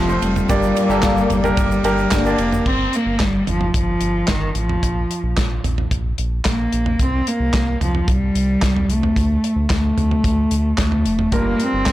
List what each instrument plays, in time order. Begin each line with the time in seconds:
Already playing: analog synth bass F1, french horn section C3 C4, cello F3, grand piano A3 C4 F4 A4 C5
0.08 grand piano A3 C4 F4 C5, shaker
0.22 analog synth bass F1, cello G3, ride, shaker
0.36 floor tom, shaker
0.49 analog synth bass G1, grand piano G2 A#3 D4 G4 D5, french horn section A#2 A#3, kick, ride, shaker
0.63 shaker
0.76 ride, shaker
0.89 analog synth bass G1, grand piano A#3 D4 G4 A4, shaker
1.02 analog synth bass G1, kick, snare, clap, ride, shaker
1.17 shaker
1.30 analog synth bass G1, floor tom, ride, shaker
1.43 grand piano A#3 D4 G4 A#4, floor tom, shaker
1.57 analog synth bass G1, kick, ride, shaker
1.71 shaker
1.84 analog synth bass G1, grand piano A#3 D4 G4 A#4, ride, shaker
1.98 shaker
2.11 analog synth bass G1, french horn section D3 D4, cello A#3, kick, snare, clap, ride, shaker
2.25 grand piano A#3 D4 G4 D5, shaker
2.38 analog synth bass F1, ride, shaker
2.52 floor tom, shaker
2.66 analog synth bass G1, cello C4, kick, crash
2.93 cello A#3, closed hi-hat
3.06 analog synth bass G1
3.19 analog synth bass G1, cello G3, kick, snare, clap, closed hi-hat
3.47 analog synth bass G1, cello F3, closed hi-hat, floor tom
3.61 floor tom
3.74 analog synth bass G1, cello F3, kick, closed hi-hat
4.01 analog synth bass G1, closed hi-hat
4.28 analog synth bass G1, cello D#3, kick, snare, clap, closed hi-hat
4.55 analog synth bass A1, cello F3, closed hi-hat
4.69 floor tom
4.83 analog synth bass A#1, kick, closed hi-hat
5.11 closed hi-hat
5.23 analog synth bass A#1
5.37 analog synth bass A#1, kick, snare, clap, closed hi-hat
5.64 analog synth bass A#1, closed hi-hat, floor tom
5.78 floor tom
5.91 analog synth bass A#1, kick, closed hi-hat
6.18 analog synth bass A#1, closed hi-hat
6.45 analog synth bass A#1, cello A#3, kick, snare, clap, closed hi-hat
6.73 analog synth bass A#1, closed hi-hat
6.86 floor tom
6.99 analog synth bass C2, cello C4, kick, closed hi-hat
7.27 cello A#3, closed hi-hat
7.40 analog synth bass C2
7.53 analog synth bass C2, kick, snare, clap, closed hi-hat
7.80 analog synth bass C2, cello F3, closed hi-hat, floor tom
7.95 floor tom
8.08 analog synth bass C2, cello G3, kick, closed hi-hat
8.35 analog synth bass C2, closed hi-hat
8.62 analog synth bass C2, kick, snare, clap, closed hi-hat
8.76 floor tom
8.88 analog synth bass C2, cello A3, closed hi-hat
9.03 floor tom
9.16 analog synth bass D2, kick, closed hi-hat
9.44 closed hi-hat
9.56 analog synth bass D2
9.70 analog synth bass D2, cello A3, kick, snare, clap, closed hi-hat
9.97 analog synth bass D2, closed hi-hat, floor tom
10.11 floor tom
10.24 analog synth bass D2, kick, closed hi-hat
10.51 analog synth bass D2, closed hi-hat
10.78 analog synth bass D2, cello A3, kick, snare, clap, closed hi-hat
10.92 floor tom
11.06 analog synth bass F1, closed hi-hat
11.19 floor tom
11.32 analog synth bass G1, grand piano G2 G3 F4 A#4, cello A#3, kick, closed hi-hat
11.60 cello C4, closed hi-hat
11.73 analog synth bass G1
11.86 analog synth bass G1, kick, snare, clap, closed hi-hat